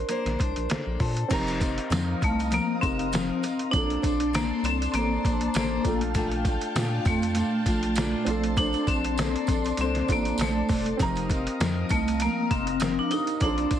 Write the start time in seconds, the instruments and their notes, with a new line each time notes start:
Already playing: upright piano C4 D4 F4 A5, vibraphone A#4
0.09 steel-string acoustic guitar A#3 D4 C5, closed hi-hat
0.25 analog synth bass A#1, snare, closed hi-hat
0.39 analog synth bass C2, steel-string acoustic guitar D4 C5, kick, closed hi-hat
0.56 analog synth bass A#1, closed hi-hat
0.69 analog synth bass A#1, steel-string acoustic guitar A#3 D4 A4 C5, snare, closed hi-hat
0.86 analog synth bass A#1
0.99 analog synth bass A#2, steel-string acoustic guitar D4 A4 C5, kick, open hi-hat
1.17 closed hi-hat
1.28 analog synth bass F1, steel-string acoustic guitar F3 C4 D#4 A#4, upright piano C4 D#4 G4, string machine F5 A#5 D#6, kick, closed hi-hat, crash, tambourine
1.33 upright piano A#5
1.47 closed hi-hat, tambourine
1.60 steel-string acoustic guitar C4 D#4 A#4, kick, closed hi-hat, tambourine
1.78 closed hi-hat
1.90 analog synth bass F2, steel-string acoustic guitar F3 C4 D#4 A#4, snare, closed hi-hat, tambourine
2.22 analog synth bass C2, vibraphone A3, steel-string acoustic guitar C4 D#4, kick, closed hi-hat, tambourine
2.39 closed hi-hat, tambourine
2.51 steel-string acoustic guitar F3 C4 D#4 A#4, vibraphone A#3, closed hi-hat, tambourine
2.81 analog synth bass F1, upright piano C4 D#4 G4 A#4, vibraphone C4, steel-string acoustic guitar C4 D#4 A#4, kick, closed hi-hat, tambourine
2.99 closed hi-hat
3.12 steel-string acoustic guitar F3 C4 D#4 A#4, snare, closed hi-hat, tambourine
3.42 steel-string acoustic guitar C4 D#4 A#4, closed hi-hat, tambourine
3.59 closed hi-hat
3.71 analog synth bass A#1, steel-string acoustic guitar A#3 D4 A4, upright piano C4 D4 F4, vibraphone D4, string machine D5 A5 C6, kick, closed hi-hat, tambourine
3.75 upright piano A4, steel-string acoustic guitar C5
3.90 closed hi-hat
4.02 analog synth bass A#1, steel-string acoustic guitar D4 A4 C5, kick, closed hi-hat, tambourine
4.20 closed hi-hat
4.33 steel-string acoustic guitar A#3 D4 A4 C5, vibraphone A#3, snare, closed hi-hat, tambourine
4.63 analog synth bass C2, vibraphone C4, steel-string acoustic guitar A4 C5, closed hi-hat, tambourine
4.67 steel-string acoustic guitar D4
4.82 closed hi-hat, tambourine
4.92 analog synth bass A1, steel-string acoustic guitar A#3, vibraphone A#3 C4, closed hi-hat, tambourine
4.96 steel-string acoustic guitar D4 A4 C5
5.24 analog synth bass A#1, steel-string acoustic guitar D4 A4 C5, kick, closed hi-hat, tambourine
5.41 closed hi-hat
5.54 analog synth bass A1, steel-string acoustic guitar A#3 D4 A4 C5, vibraphone A#3, snare, closed hi-hat, tambourine
5.82 analog synth bass A#1, upright piano A3 D4 F4, steel-string acoustic guitar F4, string machine F5 G5, kick, closed hi-hat, tambourine
5.87 steel-string acoustic guitar A3 D4, upright piano A4
6.01 closed hi-hat
6.14 steel-string acoustic guitar A#2 A3 D4 F4, kick, closed hi-hat, tambourine
6.32 closed hi-hat
6.45 steel-string acoustic guitar A3 D4 F4, kick, closed hi-hat, tambourine
6.61 closed hi-hat
6.75 analog synth bass A#2, steel-string acoustic guitar A#2 A3 D4 F4, snare, closed hi-hat, tambourine
7.05 analog synth bass F2, vibraphone A3, steel-string acoustic guitar A3 F4, kick, closed hi-hat, tambourine
7.22 closed hi-hat, tambourine
7.35 steel-string acoustic guitar A#2 A3 D4 F4, closed hi-hat, tambourine
7.66 analog synth bass A#1, steel-string acoustic guitar A3 D4 F4, kick, closed hi-hat, tambourine
7.83 closed hi-hat
7.96 steel-string acoustic guitar A#2 A3 D4 F4, snare, closed hi-hat, tambourine
8.25 analog synth bass A#1, upright piano C4 D4 F4, steel-string acoustic guitar A4 C5, string machine D5 C6, closed hi-hat, tambourine
8.29 steel-string acoustic guitar D4, upright piano A4
8.44 closed hi-hat
8.56 steel-string acoustic guitar A#3 D4 A4 C5, vibraphone D4, kick, closed hi-hat, tambourine
8.73 closed hi-hat, tambourine
8.87 analog synth bass A#1, vibraphone C4, steel-string acoustic guitar D4 A4 C5, kick, closed hi-hat, tambourine
9.05 closed hi-hat
9.18 steel-string acoustic guitar A#3 D4 A4 C5, snare, closed hi-hat, tambourine
9.36 closed hi-hat
9.47 analog synth bass A#1, steel-string acoustic guitar D4 A4 C5, kick, closed hi-hat, tambourine
9.64 closed hi-hat, tambourine
9.77 analog synth bass C2, steel-string acoustic guitar A#3 D4 A4 C5, vibraphone C4, closed hi-hat, tambourine
9.95 snare, closed hi-hat
10.08 analog synth bass A1, upright piano C4 D4 F4 A4, steel-string acoustic guitar D4 A4 C5, kick, closed hi-hat, tambourine
10.12 vibraphone A#3
10.25 closed hi-hat, tambourine
10.38 analog synth bass A#1, vibraphone A3, steel-string acoustic guitar D4 A4 C5, snare, closed hi-hat, tambourine
10.69 analog synth bass E1, steel-string acoustic guitar D4 A4 C5, kick, open hi-hat, tambourine
10.86 closed hi-hat
10.97 analog synth bass F1, steel-string acoustic guitar F3 C4 D#4, upright piano C4 D#4 G4, string machine F5 A#5 D#6, kick, closed hi-hat, tambourine
11.01 steel-string acoustic guitar A#4, upright piano A#5
11.15 closed hi-hat, tambourine
11.29 steel-string acoustic guitar C4 D#4 A#4, kick, closed hi-hat, tambourine
11.47 closed hi-hat
11.60 analog synth bass F2, steel-string acoustic guitar F3 C4 D#4 A#4, snare, closed hi-hat, tambourine
11.89 analog synth bass C2, vibraphone A3, steel-string acoustic guitar C4 D#4, kick, closed hi-hat, tambourine
12.08 closed hi-hat, tambourine
12.20 steel-string acoustic guitar F3 C4 D#4, vibraphone A#3, closed hi-hat, tambourine
12.24 steel-string acoustic guitar A#4
12.51 analog synth bass F1, vibraphone C4, steel-string acoustic guitar C4 D#4 A#4, kick, closed hi-hat, tambourine
12.67 closed hi-hat
12.80 steel-string acoustic guitar F3 C4 D#4 A#4, snare, closed hi-hat, tambourine
12.99 vibraphone D4
13.11 upright piano C4 D#4 G4 A#4, steel-string acoustic guitar C4 D#4 A#4, vibraphone D#4, closed hi-hat, tambourine
13.27 closed hi-hat, tambourine
13.40 analog synth bass A#1, steel-string acoustic guitar A#3 D4 A4 C5, upright piano C4 D4 F4, vibraphone D4, string machine D5 A5 C6, kick, closed hi-hat, tambourine
13.45 upright piano A4
13.58 closed hi-hat
13.71 analog synth bass A#1, steel-string acoustic guitar A4 C5, kick, closed hi-hat, tambourine
13.75 steel-string acoustic guitar D4